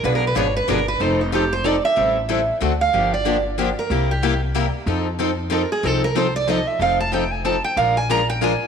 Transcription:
X:1
M:3/4
L:1/16
Q:"Swing" 1/4=186
K:Fmix
V:1 name="Steel-string acoustic guitar"
(3=B2 _B2 =B2 _d2 B2 _B2 =B2 | c2 E2 G2 c2 d2 =e2- | =e8 z2 f2- | f2 d4 z4 B2- |
B2 G4 z6 | z8 B2 _A2 | A2 B2 c2 d2 e2 =e2 | f2 a2 g2 _a2 =a2 g2 |
f2 _a2 b2 g2 a3 z |]
V:2 name="Steel-string acoustic guitar"
[=B,,F,=B,D^G=B]2 z2 [B,,F,B,DGB]2 z2 [B,,F,B,DGB]2 z2 | [F,CEA]2 z2 [F,CEA]2 z2 [F,CEA]2 z2 | [=E,G,C=EA]2 z2 [E,G,CEA]2 z2 [D,A,C^FA]2 z2 | [D,F,B,DG]2 z2 [D,F,B,DG]2 z2 [D,F,B,DG]2 z2 |
[C,G,B,=EG]2 z2 [C,G,B,EG]2 z2 [C,G,B,EG]2 z2 | [F,CEA]2 z2 [F,CEA]2 z2 [F,CEA]2 z2 | [F,CEA]2 z2 [F,CEA]2 z2 [F,CEA]2 z2 | [F,CEA]2 z2 [F,CEA]2 z2 [F,CEA]2 z2 |
[F,_A,DFB]2 z2 [F,A,DFB]2 z2 [F,A,DFB]2 z2 |]
V:3 name="Steel-string acoustic guitar"
[=B,,F,=B,D^G=B]2 z2 [B,,F,B,DGB]2 z2 [B,,F,B,DGB]2 z2 | [F,CEA]2 z2 [F,CEA]2 z2 [F,CEA]2 z2 | [=E,G,C=EA]2 z2 [E,G,CEA]2 z2 [D,A,C^FA]2 z2 | [D,F,B,DG]2 z2 [D,F,B,DG]2 z2 [D,F,B,DG]2 z2 |
[C,G,B,=EG]2 z2 [C,G,B,EG]2 z2 [C,G,B,EG]2 z2 | [F,CEA]2 z2 [F,CEA]2 z2 [F,CEA]2 z2 | [F,CEA]2 z2 [F,CEA]2 z2 [F,CEA]2 z2 | [F,CEA]2 z2 [F,CEA]2 z2 [F,CEA]2 z2 |
[F,_A,DFB]2 z2 [F,A,DFB]2 z2 [F,A,DFB]2 z2 |]
V:4 name="Upright bass" clef=bass
=B,,,4 ^G,,,4 =G,,,4 | F,,,12 | A,,,8 D,,4 | G,,,12 |
C,,12 | F,,12 | C,,12 | F,,,12 |
B,,,12 |]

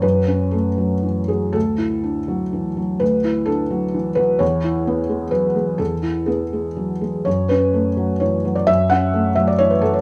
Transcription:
X:1
M:3/4
L:1/16
Q:1/4=126
K:Dlyd
V:1 name="Felt piano"
B4 A4 z2 G2 | A12 | B4 A4 z2 B2 | c8 B4 |
A4 G6 z2 | c2 B6 c3 d | e2 f4 e d c B A c |]
V:2 name="Felt piano" clef=bass
[F,,F,]2 C2 A,2 F,2 E,2 F,2 | D,,2 E2 D2 F,2 E,2 F,2 | D,,2 E2 D2 F,2 E,2 F,2 | E,,2 E2 B,2 G,2 F,2 G,2 |
E,,2 E2 B,2 G,2 F,2 G,2 | F,,2 C2 A,2 F,2 E,2 F,2 | F,,2 C2 A,2 F,2 E,2 F,2 |]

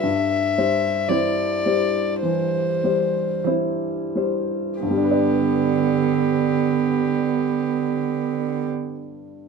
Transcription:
X:1
M:4/4
L:1/8
Q:1/4=51
K:G
V:1 name="Violin"
e2 d2 c2 z2 | G8 |]
V:2 name="Grand piano"
G,, [G,c] [Ec] [G,c] E, [G,c] [Ec] [G,c] | [G,,G,DBd]8 |]
V:3 name="Viola"
z2 C2 z2 C2 | B,8 |]
V:4 name="Cello" clef=bass
z2 E,2 z2 E,2 | D,8 |]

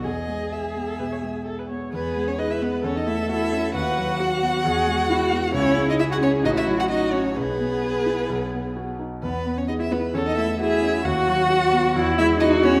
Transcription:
X:1
M:4/4
L:1/16
Q:1/4=132
K:E
V:1 name="Violin"
d4 e8- e2 z2 | B3 c d e B2 c d e2 e4 | f16 | c3 d e f c2 d e2 f d2 c2 |
B12- B2 z2 | B3 c d e B2 c d e2 e4 | f8- f2 e2 d2 c2 |]
V:2 name="Viola"
G4 G3 A B c G2 A B c2 | G4 B4 A8 | B4 F4 G4 F4 | E4 G4 F4 F4 |
G12- G2 z2 | z8 A4 G4 | F8 E4 F4 |]
V:3 name="Cello"
G12- G2 z2 | B,3 C D E B,2 C D E2 E4 | F16 | C3 D E F C2 D E2 F D2 C2 |
B,12- B,2 z2 | B,3 C D E B,2 C D E2 E4 | F8- F2 E2 D2 C2 |]
V:4 name="Grand piano"
E,,2 G,4 B,2 B,,2 G,2 G2 B,2 | E,,2 G,2 G2 B,2 E,,2 A,2 F2 C2 | D,,2 F,2 F2 B,2 E,,2 G,2 E2 B,2 | C,,2 G,2 E2 C2 A,,,2 F,2 F2 C2 |
B,,,2 B,2 G2 E2 B,,,2 B,2 F2 D2 | E,,2 B,2 G2 E2 E,,2 A,2 F2 C2 | D,,2 F,2 F2 B,2 E,,2 G,2 E2 B,2 |]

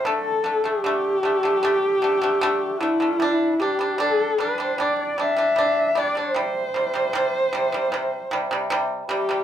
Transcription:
X:1
M:4/4
L:1/16
Q:1/4=76
K:none
V:1 name="Horsehead fiddle"
A3 G8- G3 E2- | E2 G2 A2 c2 d d e4 d c- | c12 z2 G2 |]
V:2 name="Pipa" clef=bass
[D,A,]2 [D,A,] [D,A,] [D,A,]2 [D,A,] [D,A,] [D,A,]2 [D,A,] [D,A,] [D,A,]2 [D,A,] [D,A,] | [G,D]2 [G,D] [G,D] [G,D]2 [G,D] [G,D] [G,D]2 [G,D] [G,D] [G,D]2 [G,D] [G,D] | [C,G,]2 [C,G,] [C,G,] [C,G,]2 [C,G,] [C,G,] [C,G,]2 [C,G,] [C,G,] [C,G,]2 [C,G,] [C,G,] |]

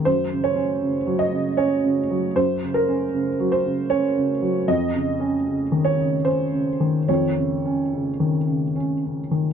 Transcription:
X:1
M:3/4
L:1/8
Q:1/4=77
K:Db
V:1 name="Felt piano"
c d2 e d2 | c B2 c d2 | e3 d c2 | d4 z2 |]
V:2 name="Felt piano" clef=bass
(3G,, D, D (3D, G, D, (3D D, G, | (3G,, D, D (3D, G, D, (3D D, G, | (3F,, D, D (3D, E, D, (3D D, E, | (3F,, D, D (3D, E, D, (3D D, E, |]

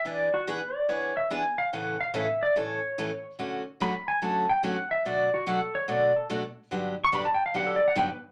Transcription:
X:1
M:4/4
L:1/16
Q:"Swing" 1/4=144
K:D
V:1 name="Pedal steel guitar"
d2 F2 B2 d2 c2 e2 ^g2 =f2 | f2 =f2 e2 d2 z8 | z4 b2 ^g2 a2 =g2 f2 e2 | d2 F2 A2 c2 d2 A2 z4 |
z3 c' b a g =f ^f A d f g B z2 |]
V:2 name="Steel-string acoustic guitar"
[E,B,D^G]2 z2 [E,B,DG]2 z2 [E,B,DG]2 z2 [E,B,DG]2 z2 | [A,,C,E,A,CA]2 z2 [A,,C,E,A,CA]2 z2 [A,,C,E,A,CA]2 z2 [A,,C,E,A,CA]2 z2 | [D,F,A,CF]2 z2 [D,F,A,CF]2 z2 [D,F,A,CF]2 z2 [D,F,A,CF]2 z2 | [B,,F,A,DF]2 z2 [B,,F,A,DF]2 z2 [B,,F,A,DF]2 z2 [B,,F,A,DF]2 z2 |
[G,,D,F,B,DG]2 z2 [G,,D,F,B,DG]2 z2 [G,,D,F,B,DG]2 z2 [G,,D,F,B,DG]2 z2 |]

